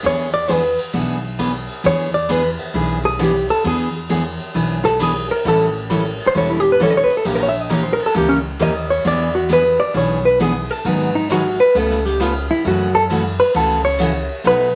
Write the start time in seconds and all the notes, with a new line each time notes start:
0.03 E2 E3 B3 D4 G#4 C#5, kick, ride
0.34 D5
0.48 E3 B3 D4 G#4 B4, kick, hi-hat pedal, ride
0.78 ride
0.93 B1 E3 B3 D4 G#4, kick, ride
1.39 E3 B3 D4 G#4, kick, hi-hat pedal, ride
1.68 ride
1.84 E2 E3 B3 D4 G#4 C#5, kick, ride
2.14 D5
2.29 E3 B3 D4 G#4 B4, kick, hi-hat pedal, ride
2.58 ride
2.74 B1 E3 B3 D4 G#4, kick, ride
3.04 G#4, ride
3.19 E3 B3 D4 G#4, kick, hi-hat pedal, ride
3.23 G4
3.49 A4, ride
3.64 E2 E3 B3 D4 G#4, kick, ride
4.09 E3 B3 D4 G#4, kick, hi-hat pedal, ride
4.39 ride
4.54 B1 E3 B3 D4 G#4, kick, ride
4.84 A4, snare
4.99 E3 B3 D4 G#4, kick, hi-hat pedal, ride
5.29 A#4, ride
5.45 A1 E3 G3 C#4 E4 A4, kick, ride
5.89 E3 G3 C#4 E4 A4, kick, hi-hat pedal, ride
6.20 ride
6.27 C5
6.35 E1 E3 G3 C#4 E4 A4 C#5, kick, ride
6.50 E4
6.60 G4
6.72 B4
6.80 E3 G3 C#4 E4 A4 C#5, kick, hi-hat pedal, ride
6.91 D5
6.97 C#5
7.04 B4
7.10 ride
7.17 A4
7.25 A#1 E3 A#3 C#4 G4 A#4, kick, ride
7.35 A#4
7.43 C#5
7.49 E5
7.62 D#5
7.69 E3 A#3 C#4 G4 A#4 C#5, kick, hi-hat pedal, ride
7.84 C5
7.93 A#4
8.00 ride
8.06 A4
8.14 C#2 E3 A#3 C#4 G4 A#4, kick
8.29 C#4
8.59 D#2 E3 A#3 C#4 G4 A#4 D#5, kick, hi-hat pedal, ride
8.89 C#5, ride
9.04 E2 E3 B3 D4 G#4 D5, kick, ride
9.35 F#4
9.49 E3 B3 D4 G#4, kick, hi-hat pedal, ride
9.53 B4
9.80 D5
9.94 B1 E3 B3 D4 G#4 C#5, kick, ride
10.25 B4
10.39 E3 B3 D4 G#4, kick, hi-hat pedal, ride
10.69 A4, ride
10.85 G#1 D#3 F#3 B3 D#4 G#4 B4, kick, ride
11.15 D#4
11.29 D#3 F#3 B3 D#4 F#4 G#4, kick, hi-hat pedal, ride
11.60 B4
11.75 C#2 C#3 A3 B3 F4 A4 B4, kick, ride
11.90 snare
12.05 G4, snare
12.20 C#3 A3 B3 F4 B4, kick, hi-hat pedal, ride
12.51 E4
12.65 F#2 C#3 E3 A3 C#4 F#4, kick, ride
12.95 A4
13.10 C#3 E3 A3 C#4 F#4, kick, hi-hat pedal, ride
13.39 B4, ride
13.54 C#2 C#3 E3 A3 C#4 F#4 A4, kick, ride
13.85 C#5
13.99 C#3 E3 A3 C#4 F#4, kick, hi-hat pedal, ride
14.44 B1 B2 F#3 A3 D#4 F#4 B4, kick, ride